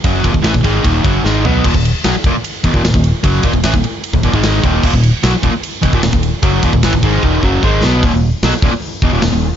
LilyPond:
<<
  \new Staff \with { instrumentName = "Overdriven electric guitar" } { \clef bass \time 4/4 \key ees \minor \tempo 4 = 150 <ges, des ges>8 <ees, bes,>16 <ees, bes,>16 <a, fes>16 <ees, bes,>16 <aes, ees aes>8 <ees, bes, ees>8 <ges, des ges>8 <aes, ees aes>8 <ces ges ces'>8 | <ees, bes,>16 <ees, bes,>8 r16 <ces ges>16 r16 <ees, bes,>16 r8. <fes, ces>16 <ees, bes,>16 <ees, bes,>16 <ees, bes,>8 r16 | <ges, des ges>8 <ees, bes,>16 <ees, bes,>16 <a, fes>16 <ees, bes,>16 r8. <ees, bes,>16 <ees, bes,>16 <aes, ees aes>8. <ees, bes, ees>8 | <ees, bes,>16 <ees, bes,>8 r16 <ces ges>16 r16 <ees, bes,>16 r8. <fes, ces>16 <ees, bes,>16 <ees, bes,>16 <ees, bes,>8 r16 |
<ges, des ges>8 <ees, bes,>16 <ees, bes,>16 <a, fes>16 <ees, bes,>16 <aes, ees aes>8 <ees, bes, ees>8 <ges, des ges>8 <aes, ees aes>8 <ces ges ces'>8 | <ees, bes,>16 <ees, bes,>8 r16 <ces ges>16 r16 <ees, bes,>16 r8. <fes, ces>16 <ees, bes,>16 <ees, bes,>16 <ees, bes,>8 r16 | }
  \new Staff \with { instrumentName = "Fingered electric bass" } { \clef bass \time 4/4 \key ees \minor ges,,8 ees,,16 ees,,16 a,,16 ees,,16 aes,,8 ees,,8 ges,,8 aes,,8 ces,8 | ees,,16 ees,,8 r16 ces,16 r16 ees,,16 r8. fes,,16 ees,,16 ees,,16 ees,,8 r16 | ges,,8 ees,,16 ees,,16 a,,16 ees,,16 r8. ees,,16 ees,,16 aes,,8. ees,,8 | ees,,16 ees,,8 r16 ces,16 r16 ees,,16 r8. fes,,16 ees,,16 ees,,16 ees,,8 r16 |
ges,,8 ees,,16 ees,,16 a,,16 ees,,16 aes,,8 ees,,8 ges,,8 aes,,8 ces,8 | ees,,16 ees,,8 r16 ces,16 r16 ees,,16 r8. fes,,16 ees,,16 ees,,16 ees,,8 r16 | }
  \new DrumStaff \with { instrumentName = "Drums" } \drummode { \time 4/4 <bd cymr>8 <bd cymr>16 bd16 <cymr sn>16 bd16 <bd cymr>8 <bd cymr>8 <bd cymr>8 sn8 tomfh8 | <cymc bd>16 bd16 cymr8 <cymr sn>8 <bd cymr>8 cymr8 <bd cymr>16 bd16 <cymr sn>16 bd16 cymr8 | <bd cymr>8 <bd cymr>16 bd16 <cymr sn>16 bd16 cymr8 cymr16 bd16 <bd cymr>16 bd16 <cymr sn>8 <bd cymr>8 | <cymc bd>16 bd16 cymr8 <cymr sn>8 <bd cymr>8 cymr8 <bd cymr>16 bd16 <cymr sn>16 bd16 cymr8 |
<bd cymr>8 <bd cymr>16 bd16 <cymr sn>16 bd16 <bd cymr>8 bd8 bd8 bd8 sn8 | <hho bd>4 <hho sn>8 bd8 hho8 bd8 <hho sn>4 | }
>>